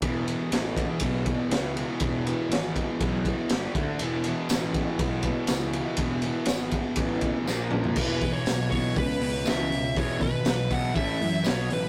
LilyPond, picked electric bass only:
\new Staff \with { instrumentName = "Picked electric bass" } { \clef bass \time 4/4 \key a \lydian \tempo 4 = 121 e,,4 a,,4 b,,4 cis,4 | e,,4 gis,,4 b,,4 g,,8 d,8 | e,,4 a,,4 b,,4 cis,4 | e,,4 gis,,4 a,,4 ais,,8 ais,,8 |
e,,4 b,,4 cis,8 cis,8 cis,4 | e,,8 gis,,8 b,,4 a,,8 fis,8 b,,8 a,,8 | }